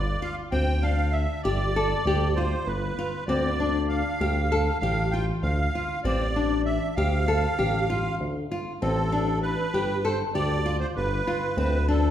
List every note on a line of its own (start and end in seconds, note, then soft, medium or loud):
0.00 0.16 G1 medium
0.00 0.23 D5 medium
0.21 0.42 F4 medium
0.21 0.35 F5 medium
0.52 1.27 D2 medium
0.52 0.72 C4 medium
0.52 0.84 G5 medium
0.82 1.23 D4 medium
0.82 1.14 F5 medium
1.12 1.41 E5 medium
1.43 1.94 G1 medium
1.43 1.65 G4 medium
1.43 2.38 D5 medium
1.76 1.96 A4 medium
2.05 2.55 D2 medium
2.05 2.27 G4 medium
2.36 2.77 F4 medium
2.36 2.68 C5 medium
2.66 2.92 G1 medium
2.66 3.24 B4 medium
2.99 3.18 F4 medium
3.27 4.02 D2 medium
3.27 3.49 C4 medium
3.27 3.85 D5 medium
3.60 4.00 D4 medium
3.89 4.78 F5 medium
4.20 4.70 D2 medium
4.20 4.41 G4 medium
4.52 4.72 A4 medium
4.80 5.32 A1 medium
4.80 5.03 G4 medium
4.80 5.13 F5 medium
5.11 5.53 F4 medium
5.11 5.25 G5 medium
5.42 5.68 D2 medium
5.42 6.00 F5 medium
5.75 5.95 F4 medium
6.04 6.79 A1 medium
6.04 6.25 C4 medium
6.04 6.62 D5 medium
6.36 6.76 D4 medium
6.66 6.95 E5 medium
6.96 7.47 D2 loud
6.96 7.18 G4 medium
6.96 8.15 F5 medium
7.28 7.48 A4 medium
7.59 8.08 A1 medium
7.59 7.79 G4 medium
7.90 8.30 F4 medium
8.20 8.45 D2 medium
8.52 8.71 F4 medium
8.82 9.56 A1 loud
8.82 9.02 C4 medium
8.82 9.39 A4 medium
9.12 9.52 D4 medium
9.42 10.06 B4 medium
9.74 10.23 G1 medium
9.74 9.94 G4 medium
10.05 10.24 A4 medium
10.05 10.18 C5 medium
10.34 10.84 D2 medium
10.34 10.55 G4 medium
10.34 10.77 D5 loud
10.66 11.06 F4 medium
10.80 10.87 C5 medium
10.96 11.21 G1 medium
10.96 11.57 B4 medium
11.27 11.47 F4 medium
11.57 12.11 D2 loud
11.57 11.78 C4 medium
11.57 11.87 B4 medium
11.88 12.11 D4 medium
11.88 12.11 A4 medium